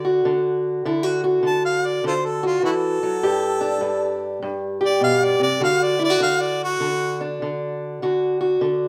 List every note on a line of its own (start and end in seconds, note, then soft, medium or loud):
0.00 0.24 D3 medium
0.00 0.22 D5 loud
0.05 0.83 F#4 medium
0.25 0.84 D3 medium
0.85 1.41 D3 medium
0.85 1.03 E4 medium
1.03 1.23 F#4 medium
1.24 2.42 F#4 medium
1.43 2.03 D3 medium
1.43 1.65 A5 medium
1.66 1.88 F5 medium
1.87 2.05 D5 medium
2.04 2.62 D3 medium
2.04 2.14 F4 medium
2.04 2.14 A4 medium
2.04 2.27 C5 medium
2.26 2.44 A4 medium
2.43 2.64 F4 medium
2.43 3.21 F#4 medium
2.63 3.02 E3 medium
2.63 2.74 E4 medium
2.63 2.71 F#4 medium
2.63 4.40 A4 medium
3.03 3.24 F#3 medium
3.23 3.80 G2 medium
3.23 4.79 G4 medium
3.61 6.02 D4 medium
3.81 4.41 G2 medium
4.42 5.60 G2 medium
4.81 5.60 G4 medium
4.85 5.03 D5 loud
5.00 5.39 B2 medium
5.00 5.26 F5 medium
5.24 5.43 D5 medium
5.40 5.62 C3 medium
5.40 5.62 D5 loud
5.60 6.20 D3 medium
5.60 5.99 F#4 medium
5.60 5.85 F5 medium
5.84 6.03 D5 medium
5.99 6.10 E4 medium
6.04 6.22 D5 loud
6.10 8.01 F#4 medium
6.20 6.80 D3 medium
6.20 6.45 F5 medium
6.43 6.62 D5 medium
6.64 7.21 F#4 loud
6.80 7.41 D3 medium
7.21 8.88 D4 medium
7.42 8.01 D3 medium
8.02 8.60 D3 medium
8.02 8.39 F#4 medium
8.41 8.88 F#4 medium
8.61 8.88 D3 medium